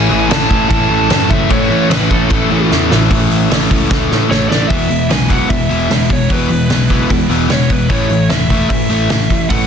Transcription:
Already playing: distorted electric guitar A2 E3 A3 C#4 E4, overdriven electric guitar E3, lead electric guitar G#5
0.10 picked electric bass A1, distorted electric guitar A2 E3 A3 C#4 E4
0.29 picked electric bass A1, distorted electric guitar A2 E3 A3 C#4 E4, lead electric guitar A5, snare, crash
0.50 picked electric bass A1, distorted electric guitar A2 E3 A3 C#4 E4, kick
0.69 picked electric bass A1, distorted electric guitar A2 E3 A3 C#4 E4, lead electric guitar A5, kick, crash
0.89 picked electric bass A1, distorted electric guitar A2 E3 A3 C#4 E4
1.10 picked electric bass F#2, distorted electric guitar A2 E3 A3 C#4 E4, snare, crash
1.29 picked electric bass F#1, distorted electric guitar A2 E3 A3 C#4 E4, lead electric guitar E5, kick
1.49 picked electric bass A1, distorted electric guitar A2 E3 A3 C#4 E4, lead electric guitar C#5, kick, crash
1.69 picked electric bass A1, distorted electric guitar A2 E3 A3 C#4 E4
1.89 picked electric bass A1, distorted electric guitar A2 E3 A3 C#4 E4, lead electric guitar B4, snare, crash
2.10 picked electric bass A1, distorted electric guitar A2 E3 A3 C#4 E4, lead electric guitar A4, kick
2.30 picked electric bass A1, distorted electric guitar A2 E3 A3 C#4 E4, kick, crash
2.50 picked electric bass A1, distorted electric guitar A2 E3 A3 C#4 E4
2.70 picked electric bass E2, distorted electric guitar A2 E3 A3 C#4 E4, snare
2.90 picked electric bass A1, distorted electric guitar A2 E3 A3 C#4 E4, snare
3.11 picked electric bass A1, distorted electric guitar A2 E3 A3 C#4 E4, kick, open hi-hat
3.31 picked electric bass A1, open hi-hat
3.51 picked electric bass A1, distorted electric guitar A2 E3 A3 C#4 E4, snare, open hi-hat
3.70 picked electric bass C#2, distorted electric guitar A2 E3 A3 C#4 E4, kick, open hi-hat
3.90 picked electric bass C#2, distorted electric guitar A2 E3 A3 C#4 E4, kick, snare
4.12 picked electric bass A2, snare
4.30 picked electric bass A1, distorted electric guitar A2 E3 A3 C#4 E4, lead electric guitar C#5, snare
4.49 picked electric bass A1, distorted electric guitar A2 E3 A3 C#4 E4, lead electric guitar D5, snare
4.68 picked electric bass E1, overdriven electric guitar E2 B2, distorted electric guitar E3 G#3 B3 E4, lead electric guitar E5, kick, open hi-hat
4.89 picked electric bass E1, overdriven electric guitar E2 B2, distorted electric guitar E3 G#3, open hi-hat
5.09 picked electric bass B1, overdriven electric guitar E2 B2, distorted electric guitar E3 G#3 B3 E4, lead electric guitar G#5, snare, open hi-hat
5.28 overdriven electric guitar E2 B2, distorted electric guitar E3 G#3 B3 E4, lead electric guitar F#5, kick, open hi-hat
5.49 overdriven electric guitar E2 B2, picked electric bass E2, distorted electric guitar E3 G#3 B3 E4, lead electric guitar E5, kick, open hi-hat
5.69 picked electric bass E1, overdriven electric guitar E2 B2, distorted electric guitar E3 G#3 B3, open hi-hat
5.89 picked electric bass E1, overdriven electric guitar E2 B2, distorted electric guitar E3 G#3 B3 E4, snare, open hi-hat
6.09 picked electric bass E1, overdriven electric guitar E2 B2, distorted electric guitar E3 G#3 B3 E4, lead electric guitar C#5, kick, open hi-hat
6.29 picked electric bass E1, overdriven electric guitar E2 B2, distorted electric guitar E3 G#3 B3 E4, lead electric guitar B4, kick, open hi-hat
6.50 picked electric bass E1, overdriven electric guitar E2 B2, distorted electric guitar E3 G#3, open hi-hat
6.69 picked electric bass B1, overdriven electric guitar E2 B2, distorted electric guitar E3 G#3 B3 E4, snare, open hi-hat
6.89 overdriven electric guitar E2 B2, distorted electric guitar E3 G#3 B3 E4, kick, open hi-hat
7.09 picked electric bass E2, overdriven electric guitar E2 B2, distorted electric guitar E3 G#3 B3 E4, kick, open hi-hat
7.29 picked electric bass E1, overdriven electric guitar E2 B2, distorted electric guitar E3 G#3 B3, open hi-hat
7.49 picked electric bass E1, overdriven electric guitar E2 B2, distorted electric guitar E3 G#3 B3 E4, lead electric guitar C#5, snare, open hi-hat
7.69 picked electric bass E1, overdriven electric guitar E2 B2, distorted electric guitar E3 G#3 B3 E4, lead electric guitar B4, kick, open hi-hat
7.89 picked electric bass A1, distorted electric guitar A2 E3 A3 C#4 E4, lead electric guitar C#5, kick, open hi-hat
8.09 picked electric bass A1, distorted electric guitar A2 E3, open hi-hat
8.29 picked electric bass E1, distorted electric guitar A2 E3 A3 C#4 E4, lead electric guitar E5, snare, open hi-hat
8.50 distorted electric guitar A2 E3 A3 C#4 E4, kick, open hi-hat
8.69 picked electric bass A2, distorted electric guitar A2 E3 A3 C#4 E4, lead electric guitar E5, kick, open hi-hat
8.89 picked electric bass A1, distorted electric guitar A2 E3 A3, open hi-hat
9.10 picked electric bass A1, distorted electric guitar A2 E3 A3 C#4 E4, snare, open hi-hat
9.29 picked electric bass A1, distorted electric guitar A2 E3 A3 C#4 E4, kick, open hi-hat
9.49 picked electric bass A1, distorted electric guitar A2 E3 A3 C#4 E4, lead electric guitar F#5, kick, open hi-hat

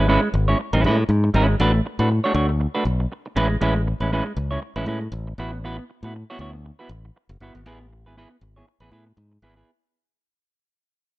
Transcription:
Already playing: fingered electric bass G#1
0.08 clean electric guitar G#3 C#4 E4 B4
0.23 muted clean electric guitar stroke
0.34 fingered electric bass G#1, muted clean electric guitar stroke
0.48 clean electric guitar G#3 C#4 E4 C#5
0.59 muted clean electric guitar stroke
0.73 fingered electric bass A1, clean electric guitar G#3 C#4 E4 B4
0.84 fingered electric bass A2, clean electric guitar G#3 C#4 E4 B4
0.98 muted clean electric guitar stroke
1.09 fingered electric bass G#2, muted clean electric guitar stroke
1.24 muted clean electric guitar stroke
1.34 fingered electric bass G#1, clean electric guitar G#3 C#4 E4 B4
1.48 muted clean electric guitar stroke
1.60 fingered electric bass A1, clean electric guitar A3 D4 F#4 B4
1.74 muted clean electric guitar stroke
1.86 muted clean electric guitar stroke
1.99 fingered electric bass A2, clean electric guitar A3 D4 F#4 B4
2.12 muted clean electric guitar stroke
2.24 clean electric guitar A3 D4 F#4 C#5
2.34 fingered electric bass D2, clean electric guitar D4 F#4 C#5
2.49 muted clean electric guitar stroke
2.60 muted clean electric guitar stroke
2.75 clean electric guitar A3 D4 F#4 B4
2.85 fingered electric bass B1, muted clean electric guitar stroke
3.00 muted clean electric guitar stroke
3.12 muted clean electric guitar stroke
3.26 muted clean electric guitar stroke
3.36 fingered electric bass A1, clean electric guitar G#3 C#4 E4 B4
3.50 muted clean electric guitar stroke
3.61 fingered electric bass A1, clean electric guitar G#3 C#4 E4 B4
3.76 muted clean electric guitar stroke
3.87 muted clean electric guitar stroke
4.00 fingered electric bass A1, clean electric guitar G#3 C#4 E4 B4
4.12 clean electric guitar G#3 C#4 E4 B4
4.26 muted clean electric guitar stroke
4.37 fingered electric bass C#2, muted clean electric guitar stroke
4.51 clean electric guitar G#3 C#4 E4 C#5
4.63 muted clean electric guitar stroke
4.76 fingered electric bass A1, clean electric guitar G#3 C#4 E4 B4
4.86 fingered electric bass A2, clean electric guitar G#3 C#4 E4 B4
5.01 muted clean electric guitar stroke
5.12 fingered electric bass A1, muted clean electric guitar stroke
5.27 muted clean electric guitar stroke
5.38 fingered electric bass A1, clean electric guitar B3 E4 F#4 B4
5.53 muted clean electric guitar stroke
5.64 clean electric guitar B3 E4 F#4 B4
5.79 muted clean electric guitar stroke
5.90 muted clean electric guitar stroke
6.03 fingered electric bass A2, clean electric guitar B3 E4 F#4 B4
6.15 muted clean electric guitar stroke
6.30 clean electric guitar B3 E4 F#4 C#5
6.39 fingered electric bass D2, clean electric guitar B3 E4 F#4 C#5
6.53 muted clean electric guitar stroke
6.65 muted clean electric guitar stroke
6.79 clean electric guitar B3 E4 F#4 B4
6.89 fingered electric bass A1
7.05 muted clean electric guitar stroke
7.16 muted clean electric guitar stroke
7.29 fingered electric bass F#1, muted clean electric guitar stroke
7.40 fingered electric bass G1, clean electric guitar B3 E4 F#4 B4
7.55 fingered electric bass G#1, muted clean electric guitar stroke
7.66 fingered electric bass A1, clean electric guitar B3 E4 G#4 B4
7.81 muted clean electric guitar stroke
7.93 muted clean electric guitar stroke
8.06 fingered electric bass G#1, clean electric guitar B3 E4 G#4 B4
8.17 clean electric guitar B3 E4 G#4 B4
8.31 muted clean electric guitar stroke
8.41 fingered electric bass G#1, muted clean electric guitar stroke
8.56 clean electric guitar B3 E4 G#4 C#5
8.80 fingered electric bass A1, clean electric guitar B3 E4 G#4 B4
8.91 fingered electric bass A2, clean electric guitar B3 E4 G#4 B4
9.06 muted clean electric guitar stroke
9.17 fingered electric bass G#2, muted clean electric guitar stroke
9.32 muted clean electric guitar stroke
9.42 fingered electric bass G#1, clean electric guitar B3 E4 G#4 B4
9.56 clean electric guitar B3 E4 G#4 B4

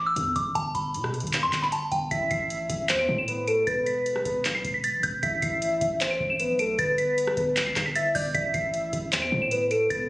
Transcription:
Already playing: 808-style bass A1
0.07 synth bell E6
0.16 808-style bass E2, kick, closed hi-hat
0.36 808-style bass A1, synth bell D6, kick, closed hi-hat
0.55 808-style bass G1, synth bell A5, kick, closed hi-hat
0.75 808-style bass G1, synth bell B5, kick, closed hi-hat
0.94 808-style bass B2, closed hi-hat
1.04 cross-stick
1.14 closed hi-hat
1.20 808-style bass G1, kick, closed hi-hat
1.27 closed hi-hat
1.33 clap, closed hi-hat
1.43 808-style bass G2, synth bell C6
1.53 808-style bass G1, kick, clap, closed hi-hat
1.63 synth bell B5, clap
1.72 synth bell A5, closed hi-hat
1.92 808-style bass G1, synth bell G5, kick, closed hi-hat
2.11 808-style bass A1, soft synth lead E5, synth bell B6, kick, closed hi-hat
2.31 808-style bass A1, synth bell C7, kick, closed hi-hat
2.50 closed hi-hat
2.70 808-style bass A1, kick, closed hi-hat
2.89 808-style bass E2, soft synth lead C5, clap, closed hi-hat
2.99 synth bell D7
3.09 808-style bass A2, kick
3.18 synth bell E7
3.28 soft synth lead B4, closed hi-hat
3.47 soft synth lead A4, synth bell D7, closed hi-hat
3.67 808-style bass E1, soft synth lead B4, synth bell A6, kick, closed hi-hat
3.86 synth bell B6, closed hi-hat
4.06 closed hi-hat
4.16 cross-stick
4.25 808-style bass E1, soft synth lead B4, kick, closed hi-hat
4.45 808-style bass B1, clap, closed hi-hat
4.55 synth bell C7
4.64 808-style bass E1, kick, closed hi-hat
4.74 synth bell B6
4.84 synth bell A6, closed hi-hat
4.94 808-style bass B1
5.03 808-style bass E1, synth bell G6, kick, closed hi-hat
5.23 808-style bass A1, soft synth lead E5, synth bell B6, kick, closed hi-hat
5.42 808-style bass A1, synth bell C7, kick, closed hi-hat
5.62 closed hi-hat
5.81 808-style bass A1, kick, closed hi-hat
6.01 soft synth lead C5, clap, closed hi-hat
6.11 synth bell D7
6.20 808-style bass A1, kick
6.30 synth bell E7
6.40 soft synth lead B4, closed hi-hat
6.49 808-style bass B1
6.59 soft synth lead A4, synth bell D7, closed hi-hat
6.79 808-style bass G1, soft synth lead B4, synth bell A6, kick, closed hi-hat
6.98 synth bell B6, closed hi-hat
7.18 closed hi-hat
7.27 cross-stick
7.37 808-style bass G1, soft synth lead B4, kick, closed hi-hat
7.57 808-style bass D2, clap, closed hi-hat
7.66 808-style bass G1, synth bell C7
7.76 808-style bass G1, kick, cross-stick, clap, closed hi-hat
7.86 synth bell B6
7.95 soft synth lead E5, synth bell A6, closed hi-hat
8.15 808-style bass G1, soft synth lead D5, synth bell G6, kick, open hi-hat
8.35 808-style bass A1, soft synth lead E5, synth bell B6, kick, closed hi-hat
8.54 808-style bass A1, synth bell C7, kick, closed hi-hat
8.74 closed hi-hat
8.93 808-style bass A1, kick, closed hi-hat
9.12 808-style bass E2, soft synth lead C5, clap, closed hi-hat
9.22 synth bell D7
9.32 808-style bass A2, kick
9.42 synth bell E7
9.51 soft synth lead B4, closed hi-hat
9.71 soft synth lead A4, synth bell D7, closed hi-hat
9.90 808-style bass E1, soft synth lead B4, synth bell A6, kick, closed hi-hat

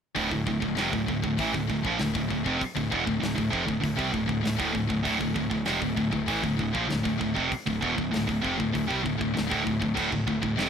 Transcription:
0.15 picked electric bass D1, distorted electric guitar D2 A2, kick, open hi-hat
0.31 picked electric bass D1, distorted electric guitar D2 A2, kick
0.46 picked electric bass D1, distorted electric guitar D2 A2, kick
0.60 picked electric bass D1, distorted electric guitar D2 A2, kick
0.75 picked electric bass F1, distorted electric guitar F2 C3, snare, open hi-hat
0.91 picked electric bass D1, distorted electric guitar D2 A2, kick
1.06 picked electric bass D1, distorted electric guitar D2 A2, kick
1.22 picked electric bass D1, distorted electric guitar D2 A2, kick
1.37 picked electric bass A1, distorted electric guitar A2 E3, kick, open hi-hat
1.53 picked electric bass D1, distorted electric guitar D2 A2, kick
1.67 picked electric bass D1, distorted electric guitar D2 A2, kick
1.83 picked electric bass A#1, distorted electric guitar A#2 F3, kick
1.98 picked electric bass D1, distorted electric guitar D2 A2, snare, open hi-hat
2.13 picked electric bass D1, distorted electric guitar D2 A2, kick
2.28 picked electric bass D1, distorted electric guitar D2 A2, kick
2.44 picked electric bass F1, distorted electric guitar F2 C3, kick
2.60 muted distorted electric guitar stroke, kick, open hi-hat
2.75 picked electric bass D1, distorted electric guitar D2 A2, kick
2.90 picked electric bass E1, distorted electric guitar E2 B2, kick
3.06 picked electric bass D1, distorted electric guitar D2 A2, kick
3.21 picked electric bass D1, distorted electric guitar D2 A2, snare, open hi-hat
3.36 picked electric bass D1, distorted electric guitar D2 A2, kick
3.51 picked electric bass F1, distorted electric guitar F2 C3, kick
3.66 picked electric bass D1, distorted electric guitar D2 A2, kick
3.81 picked electric bass D1, distorted electric guitar D2 A2, kick, open hi-hat
3.96 picked electric bass C2, distorted electric guitar C3 G3, kick
4.12 picked electric bass D1, distorted electric guitar D2 A2, kick
4.26 picked electric bass D1, distorted electric guitar D2 A2, kick
4.41 distorted electric guitar D2 A2
4.45 picked electric bass D1, snare, open hi-hat
4.57 picked electric bass D1, distorted electric guitar D2 A2, kick
4.72 picked electric bass D1, distorted electric guitar D2 A2, kick
4.87 picked electric bass D1, distorted electric guitar D2 A2, kick
5.05 picked electric bass D1, distorted electric guitar D2 A2, kick, open hi-hat
5.20 picked electric bass D1, distorted electric guitar D2 A2, kick
5.35 picked electric bass D1, distorted electric guitar D2 A2, kick
5.51 picked electric bass D1, distorted electric guitar D2 A2, kick
5.65 picked electric bass F1, distorted electric guitar F2 C3, snare, open hi-hat
5.81 picked electric bass D1, distorted electric guitar D2 A2, kick
5.96 picked electric bass D1, distorted electric guitar D2 A2, kick
6.11 picked electric bass D1, distorted electric guitar D2 A2, kick
6.26 picked electric bass A1, distorted electric guitar A2 E3, kick, open hi-hat
6.42 picked electric bass D1, distorted electric guitar D2 A2, kick
6.57 picked electric bass D1, distorted electric guitar D2 A2, kick
6.73 picked electric bass A#1, distorted electric guitar A#2 F3, kick
6.87 distorted electric guitar D2 A2, snare, open hi-hat
6.92 picked electric bass D1
7.03 picked electric bass D1, distorted electric guitar D2 A2, kick
7.18 picked electric bass D1, distorted electric guitar D2 A2, kick
7.34 picked electric bass F1, distorted electric guitar F2 C3, kick
7.50 muted distorted electric guitar stroke, muted picked electric bass stroke, kick, open hi-hat
7.66 picked electric bass D1, distorted electric guitar D2 A2, kick
7.82 picked electric bass E1, distorted electric guitar E2 B2, kick
7.96 picked electric bass D1, distorted electric guitar D2 A2, kick
8.12 picked electric bass D1, distorted electric guitar D2 A2, snare, open hi-hat
8.27 picked electric bass D1, distorted electric guitar D2 A2, kick
8.42 picked electric bass F1, distorted electric guitar F2 C3, kick
8.58 picked electric bass D1, distorted electric guitar D2 A2, kick
8.73 picked electric bass D1, distorted electric guitar D2 A2, kick, open hi-hat
8.88 picked electric bass C2, distorted electric guitar C3 G3, kick
9.03 picked electric bass D1, distorted electric guitar D2 A2, kick
9.18 distorted electric guitar D2 A2, kick
9.22 picked electric bass D1
9.33 picked electric bass D1, distorted electric guitar D2 A2, snare, open hi-hat
9.47 distorted electric guitar D2 A2
9.51 picked electric bass D1, kick
9.63 picked electric bass D1, distorted electric guitar D2 A2, kick
9.79 picked electric bass D1, distorted electric guitar D2 A2, kick
9.94 picked electric bass D1, distorted electric guitar D2 A2, kick, crash
10.11 picked electric bass D1, distorted electric guitar D2 A2, kick
10.27 picked electric bass D1, distorted electric guitar D2 A2, kick
10.42 picked electric bass D1, distorted electric guitar D2 A2, kick
10.56 picked electric bass F1, distorted electric guitar F2 C3, snare, open hi-hat

